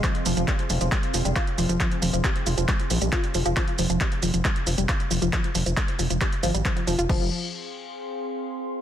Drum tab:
CC |----------------|----------------|----------------|----------------|
HH |xxoxxxoxxxoxxxox|xxoxxxoxxxoxxxox|xxoxxxoxxxoxxxox|xxoxxxoxxxoxxxox|
SH |x-xxx-xxx-xxx-xx|x-xxx-xxx-xxx-xx|x-xxx-xxx-xxx-xx|x-xxx-xxx-xxx-xx|
CP |x---x---x---x---|x---x---x---x---|x---x---x---x---|x---x---x---x---|
BD |o---o---o---o---|o---o---o---o---|o---o---o---o---|o---o---o---o---|

CC |x---------------|
HH |----------------|
SH |----------------|
CP |----------------|
BD |o---------------|